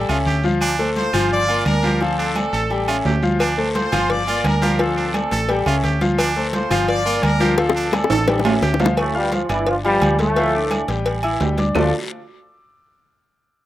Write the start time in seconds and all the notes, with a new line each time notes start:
Already playing: A4
0.09 C#2 C#4 F4 C#5 E5, high conga, low agogo, claves
0.26 D2 G4, high conga, short guiro
0.44 F3 F4 F5, high conga, short guiro
0.61 D4, high conga, low agogo, long guiro, claves
0.79 A3 A4 C5, high conga
0.96 F4 C5, high conga, low agogo, short guiro
1.13 G1 F3 F4 F5, high conga, low conga, low agogo, short guiro, claves
1.31 F4 D5, high conga, low conga, long guiro
1.48 A#3 F4 A#4 D5, high conga, low agogo
1.65 D2 D4 A#4, high conga, low agogo, short guiro, claves
1.83 F3 F4 G4 F5, high conga, short guiro
2.00 F3 D4 F4 A4 F5, high conga, low agogo, long guiro
2.18 C4 D4 A4, high conga
2.35 A3 A4 D5, high conga, low agogo, short guiro, claves
2.53 A1 A4, short guiro
2.70 G3 G4 G5, high conga, low agogo, long guiro
2.88 C#4 F4 C#5 E5, high conga, low agogo, claves
3.05 D2 G4, low timbale, short guiro
3.23 F3 F4 F5, high conga, short guiro
3.40 D4, cowbell, high conga, low agogo, long guiro, claves
3.57 A3 A4 C5, high conga
3.75 F4 C5, cowbell, high conga, low agogo, short guiro
3.92 G1 F3 F4 F5, cowbell, high conga, low conga, low agogo, short guiro, claves
4.10 F4 D5, cowbell, high conga, low conga, long guiro
4.27 A#3 F4 A#4 D5, high conga, low agogo
4.44 D2 D4 A#4, cowbell, high conga, low agogo, short guiro, claves
4.62 F3 F4 G4 F5, cowbell, high conga, short guiro
4.79 F3 D4 F4 A4 F5, cowbell, high conga, low agogo, long guiro
4.96 C4 D4 A4, high conga
5.14 A3 A4 D5, cowbell, high conga, low agogo, short guiro, claves
5.31 A1 A4, cowbell, short guiro
5.49 G3 G4 G5, cowbell, high conga, low agogo, long guiro
5.66 C#2 C#4 F4 C#5 E5, high conga, low agogo, claves
5.84 D2 G4, cowbell, high conga, short guiro
6.01 F3 F4 F5, cowbell, high conga, short guiro
6.18 D4, cowbell, low agogo, long guiro, claves
6.36 A3 A4 C5, high conga
6.53 F4 C5, cowbell, high conga, low agogo, short guiro
6.70 G1 F3 F4 F5, cowbell, high conga, low conga, low agogo, short guiro, claves
6.88 F4 D5, cowbell, high conga, long guiro
7.05 A#3 F4 A#4 D5, high conga, low agogo
7.22 D2 D4 A#4, cowbell, high conga, low agogo, short guiro, claves
7.40 F3 F4 G4 F5, cowbell, high conga, short guiro
7.57 F3 D4 F4 A4 F5, cowbell, high bongo, high conga, low agogo, long guiro
7.69 high bongo
7.75 C4 D4 A4, high conga
7.92 A3 A4 D5, cowbell, high bongo, high conga, low agogo, short guiro, claves
8.04 high bongo
8.10 A1 A4, cowbell, high timbale, short guiro
8.27 G3 G4 G5, cowbell, low bongo, high conga, high timbale, low agogo, long guiro
8.39 low bongo
8.45 C#4 F4 C#5 E5, high conga, low timbale, low agogo, claves
8.62 D2 G4, cowbell, low bongo, high conga, short guiro
8.74 low bongo
8.80 F3 F4 F5, cowbell, high conga, low timbale, short guiro
8.86 low bongo
8.97 A2 A3, cowbell, high conga, low agogo, long guiro, claves
9.14 G2 G3 F4 F5 F6, high conga
9.32 F3 F4, cowbell, high conga, low agogo, short guiro
9.49 G1 E3 D4 E4 D5 D6, cowbell, high conga, low conga, low agogo, short guiro, claves
9.67 F3 F4, cowbell, high conga, long guiro
9.84 G2 F3 G3 F4 F5, high conga, low agogo
10.01 D2, cowbell, high conga, low agogo, short guiro, claves
10.19 A2 A3 A4 A5, cowbell, high conga, short guiro
10.36 F3 F4 F5, cowbell, high conga, low agogo, long guiro
10.54 D4 D5 D6, high conga
10.70 cowbell, high conga, low agogo, short guiro, claves
10.88 A1 G3 G4 G5, cowbell, short guiro
11.05 cowbell, high conga, low agogo, long guiro
11.23 E4 E5 E6, high conga, low agogo, claves
11.40 D2 G3 G4 G5, cowbell, high conga, low timbale, short guiro
11.57 D4 D5 D6, cowbell, high conga, short guiro
11.75 D2 D3 F3 A3 D4 F4 A4 D5, low bongo, low conga, low timbale, long guiro, claves